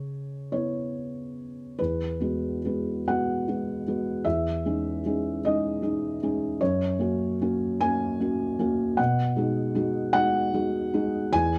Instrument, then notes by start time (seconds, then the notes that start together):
felt piano
Already playing: C#3 C#5
0.52 B3 E4 C#5
1.79 E2 B4
2.20 G#3 B3 F#4
2.65 G#3 B3 F#4
3.08 G#3 B3 F#4 F#5
3.48 G#3 B3 F#4
3.88 G#3 B3 F#4
4.25 E2 E5
4.65 G#3 C#4 D#4
5.06 G#3 C#4 D#4
5.45 G#3 C#4 D#4 D#5
5.82 G#3 C#4 D#4
6.23 G#3 C#4 D#4
6.61 F#2 C#5
6.99 A#3 C#4 F#4
7.41 A#3 C#4 F#4
7.81 A#3 C#4 F#4 G#5
8.20 A#3 C#4 F#4
8.59 A#3 C#4 F#4
8.97 B2 F#5
9.36 G#3 D#4 F#4
9.75 G#3 D#4 F#4
10.13 G#3 D#4 F#4 F#5
10.53 G#3 D#4 F#4
10.94 G#3 D#4 F#4
11.33 E2 G#5